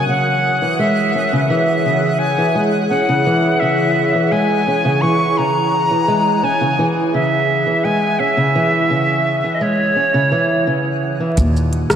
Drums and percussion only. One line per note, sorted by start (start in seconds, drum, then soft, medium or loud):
11.37 kick loud
11.37 closed hi-hat medium
11.37 shaker medium
11.57 shaker soft
11.73 closed hi-hat soft
11.90 cross-stick medium
11.90 closed hi-hat soft
11.90 shaker medium